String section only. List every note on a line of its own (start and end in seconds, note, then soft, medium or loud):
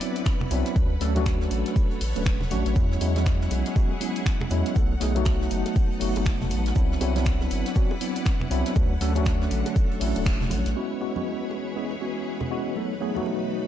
0.00 1.57 E4 medium
0.00 1.57 B4 medium
0.00 0.76 D5 medium
0.00 13.67 F#5 medium
0.76 2.76 D3 medium
0.94 2.76 A4 medium
1.14 5.57 C#5 medium
2.76 4.76 E4 medium
3.26 4.76 G#4 medium
4.76 6.76 D#4 medium
4.98 7.57 A4 medium
5.49 9.57 B4 medium
6.76 9.57 E4 medium
7.68 8.76 D5 medium
8.76 10.76 D3 medium
9.27 10.76 A4 medium
9.68 13.57 C#5 medium
10.76 12.76 E4 medium
11.38 12.76 G#4 medium
12.76 13.67 D#4 medium
13.01 13.67 A4 medium